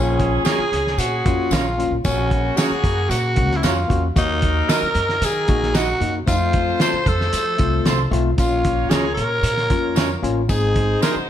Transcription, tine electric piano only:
0.00 0.63 A#3 medium
0.00 0.64 C#4 medium
0.00 0.64 F4 medium
1.25 1.60 A#3 medium
1.25 1.61 C#4 medium
1.25 1.61 F4 medium
1.78 1.96 A#3 medium
1.78 1.96 C#4 medium
1.78 1.96 F4 medium
2.05 2.75 A#3 medium
2.05 2.75 C#4 medium
2.05 2.76 F#4 medium
3.36 3.71 A#3 medium
3.36 3.72 C#4 medium
3.36 3.72 F#4 medium
3.88 4.06 A#3 medium
3.88 4.07 C#4 medium
3.88 4.07 F#4 medium
4.16 4.86 A#3 medium
4.16 4.86 D#4 medium
4.16 4.86 F#4 medium
5.48 5.83 A#3 medium
5.48 5.84 D#4 medium
5.48 5.84 F#4 medium
6.00 6.18 A#3 medium
6.00 6.18 D#4 medium
6.00 6.19 F#4 medium
6.26 6.97 A3 medium
6.26 6.97 C4 medium
6.26 6.34 D#4 medium
6.34 7.01 F4 medium
7.58 7.94 A3 medium
7.58 7.94 C4 medium
7.58 7.94 F4 medium
8.11 8.29 A3 medium
8.11 8.30 C4 medium
8.11 8.30 F4 medium
8.38 9.08 A#3 medium
8.38 9.08 C#4 medium
8.38 9.09 F4 medium
9.70 10.05 A#3 medium
9.70 10.05 C#4 medium
9.70 10.06 F4 medium
10.22 10.40 A#3 medium
10.22 10.41 C#4 medium
10.22 10.41 F4 medium
10.48 11.19 C4 medium
10.48 11.19 D#4 medium
10.48 11.20 G#4 medium

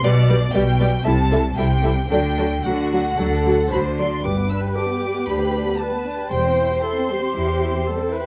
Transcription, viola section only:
0.04 0.12 G3 medium
0.04 0.12 G4 soft
0.29 0.38 G3 soft
0.29 0.37 G4 soft
0.54 0.63 G3 soft
0.54 0.62 G4 soft
0.80 0.88 G3 soft
0.80 0.89 G4 soft
1.06 1.14 G3 soft
1.06 1.14 E4 soft
1.32 1.40 G3 soft
1.32 1.40 E4 soft
1.58 1.66 G3 soft
1.58 1.66 E4 soft
1.84 1.92 G3 soft
1.84 1.92 E4 soft
2.12 2.20 F#3 soft
2.12 2.20 F#4 soft
2.39 2.47 F#3 soft
2.39 2.47 F#4 soft
2.65 2.73 F#3 soft
2.65 2.73 F#4 soft
2.92 3.00 F#3 soft
2.92 3.00 F#4 soft
3.19 3.27 F#3 soft
3.19 3.27 F#4 soft
3.46 3.54 F#3 soft
3.46 3.54 F#4 soft
3.73 3.81 F#3 soft
3.73 3.81 F#4 soft
3.99 4.07 F#3 soft
3.99 4.07 F#4 soft
4.25 4.73 B4 soft
4.76 5.80 G4 soft
5.80 6.32 B4 soft
6.31 6.83 C5 soft
6.85 7.10 A4 soft
7.11 7.87 G4 soft
7.87 8.12 A4 soft
8.12 8.26 B4 soft

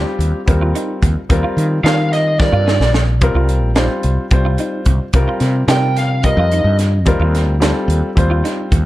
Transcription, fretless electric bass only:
0.19 0.32 D#2 medium
0.48 0.72 D#2 medium
1.02 1.15 D#2 medium
1.30 1.42 D#2 medium
1.57 1.82 D#3 medium
1.84 2.49 D#3 loud
2.53 2.77 G2 medium
2.80 3.21 A#1 loud
3.21 3.34 C2 medium
3.35 3.62 C2 medium
3.62 3.87 A#1 medium
4.04 4.16 C2 medium
4.31 4.56 C2 medium
4.86 4.99 C2 loud
5.14 5.26 C2 medium
5.41 5.66 C3 medium
5.68 6.33 C3 loud
6.37 6.62 F2 loud
6.64 7.06 G2 medium
7.06 7.19 D#2 loud
7.20 7.47 D#2 medium
7.47 7.72 D2 medium
7.88 8.01 D#2 medium
8.17 8.41 D#2 medium
8.72 8.84 D#2 loud

